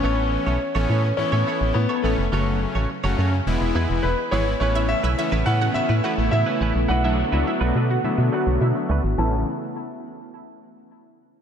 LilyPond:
<<
  \new Staff \with { instrumentName = "Grand piano" } { \time 4/4 \key a \major \tempo 4 = 105 cis'2 cis'4 b16. b32 a8~ | a8 r2 r8 b'8 cis''8 | cis''8 e''4 fis''8 e''4 e''4 | fis''2. r4 |
a''8 r2. r8 | }
  \new Staff \with { instrumentName = "Synth pluck" } { \time 4/4 \key a \major r1 | r1 | r16 <e' e''>16 r16 <e' e''>16 <e' e''>16 r8 <fis' fis''>16 <e' e''>8 <fis' fis''>16 r16 <e' e''>8. r16 | r16 <e' e''>16 r16 <e' e''>16 <e' e''>16 r8 <fis' fis''>16 <e' e''>8 <fis' fis''>16 r16 <e' e''>8. r16 |
e'8 r2. r8 | }
  \new Staff \with { instrumentName = "Clean electric guitar" } { \time 4/4 \key a \major <b e' a' cis''>8 r16 <b e' a' cis''>16 r16 <b e' a' cis''>16 <b e' a' cis''>16 r8 <b e' a' cis''>16 <b e' a' cis''>16 r8 <b e' a' cis''>16 <b e' a' cis''>16 r16 | <cis' fis' a' cis''>8 r16 <cis' fis' a' cis''>16 r16 <cis' fis' a' cis''>16 <cis' fis' a' cis''>16 r8. <b e' gis' b'>16 r8. <b e' gis' b'>16 r16 | <a cis' e' b'>8 r16 <a cis' e' b'>16 r16 <a cis' e' b'>16 <a cis' e' b'>16 r8 <a cis' e' b'>16 <a cis' e' b'>16 r8 <a cis' e' b'>16 <a cis' e' b'>16 r16 | <a d' fis' b'>8 r16 <a d' fis' b'>16 r16 <a d' fis' b'>16 <a d' fis' b'>16 r8. <a d' fis' b'>16 r8. <a d' fis' b'>16 r16 |
<a cis' e' b'>16 r2. r8. | }
  \new Staff \with { instrumentName = "String machine" } { \time 4/4 \key a \major << { r1 | r1 | <cis b e'>1 | <d b fis'>1 |
<cis a b e'>8 r2. r8 | } \\ { r1 | r1 | a1~ | a1 |
r1 | } >> }
  \new Staff \with { instrumentName = "Analog polysynth" } { \time 4/4 \key a \major <e a b cis'>4 r16 <e a b cis'>8 r16 <e a b e'>4 r8 <e a b cis'>16 r16 | <cis fis a cis'>4 r16 <cis fis a cis'>8 r16 <e gis b e'>4 r8 <e gis b e'>16 r16 | <e a b cis'>8. r16 <e a b cis'>16 r16 <e a b cis'>8. r16 <e a b e'>16 <e a b e'>4 r16 | r16 <fis a b d'>16 r16 <fis a b d'>4 r16 <fis a b d'>4. r8 |
<e a b cis'>8 r2. r8 | }
  \new Staff \with { instrumentName = "FM bass" } { \clef bass \time 4/4 \key a \major a,,8. b,,16 r16 a,,16 a,8 a,16 a,16 r16 a,,16 a,16 r16 a,,16 f,,16 | fis,,8. a,,16 r16 fis,,16 fis,8 e,,16 e,,16 e,16 e,,16 e,,16 r16 gis,,8 | a,,8. b,,16 r16 a,,16 a,8 a,16 a,16 r16 a,,16 a,16 r16 a,,16 bes,,16 | b,,8. cis,16 r16 b,,16 b,8 b,16 b,16 r16 b,,16 b,16 r16 cis,16 gis,,16 |
a,,8 r2. r8 | }
>>